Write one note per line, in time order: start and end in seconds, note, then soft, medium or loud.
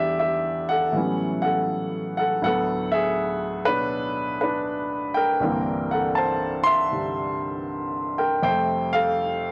0.00 0.95 E2 medium
0.00 0.91 E3 soft
0.00 0.94 G3 soft
0.00 0.96 D4 medium
0.00 0.21 G4 medium
0.00 0.98 D5 medium
0.00 0.19 E5 medium
0.19 0.68 G4 medium
0.19 0.66 E5 medium
0.69 1.41 A4 medium
0.69 1.40 F#5 medium
0.92 2.41 A2 medium
0.92 2.42 E3 soft
0.92 2.43 F#3 soft
0.92 2.43 G3 soft
0.96 2.44 B3 soft
0.96 2.44 C#4 medium
1.42 2.14 A4 medium
1.42 2.16 F#5 medium
2.17 2.42 A4 medium
2.17 2.42 F#5 medium
2.42 5.40 D2 medium
2.42 5.41 A2 medium
2.42 5.41 F#3 soft
2.42 2.90 A4 medium
2.42 2.89 F#5 medium
2.46 5.43 B3 medium
2.92 3.64 G#4 medium
2.92 3.69 E5 medium
3.65 5.41 B2 soft
3.65 4.38 D4 medium
3.65 4.40 B4 loud
3.65 5.42 C#5 soft
4.41 5.13 D4 medium
4.41 5.18 B4 medium
5.14 5.88 A#4 medium
5.14 5.86 G5 medium
5.40 8.45 C2 medium
5.40 6.90 G2 medium
5.40 6.92 D3 soft
5.40 8.46 E3 medium
5.40 8.46 C4 medium
5.45 8.47 A#3 medium
5.91 6.16 A4 medium
5.91 6.17 F#5 medium
6.15 6.29 C5 medium
6.15 6.27 A5 medium
6.64 8.15 E5 medium
6.64 8.22 C6 loud
6.91 8.45 G2 soft
6.91 8.43 C3 soft
6.91 8.46 D3 soft
6.91 8.45 G3 soft
8.18 8.43 A#4 medium
8.18 8.42 G5 medium
8.43 9.52 F2 medium
8.43 9.52 C3 soft
8.43 9.52 G3 soft
8.43 8.92 C5 medium
8.43 8.97 G5 medium
8.48 9.52 A3 medium
8.93 9.52 A4 medium
8.93 9.52 F5 loud